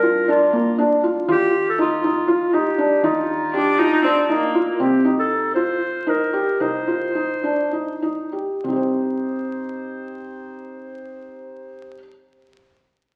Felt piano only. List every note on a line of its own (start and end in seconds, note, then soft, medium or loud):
0.03 0.24 F4 medium
0.28 0.50 D4 medium
0.53 0.75 A#3 medium
0.78 1.00 D4 medium
1.03 1.25 F4 medium
1.28 1.71 F4 medium
1.78 2.00 D#4 medium
2.04 2.25 D#4 medium
2.28 2.49 F4 medium
2.53 2.75 D#4 medium
2.78 3.00 D4 medium
3.03 3.46 D#4 medium
3.53 3.75 G4 medium
3.79 4.00 F4 medium
4.04 4.25 D4 medium
4.29 4.50 D#4 medium
4.55 4.76 F4 medium
4.80 5.01 C4 medium
5.04 5.47 D#4 medium
5.56 5.99 F4 medium
6.07 6.29 D#4 medium
6.33 6.56 G4 medium
6.60 6.83 D#4 medium
6.87 7.11 F4 medium
7.15 7.39 D#4 medium
7.43 7.68 D4 medium
7.72 7.98 D#4 medium
8.02 8.29 D#4 medium
8.32 8.59 G4 soft
8.64 11.95 C4 soft
8.68 11.99 D#4 soft
8.68 12.03 G4 soft
8.76 12.07 C5 soft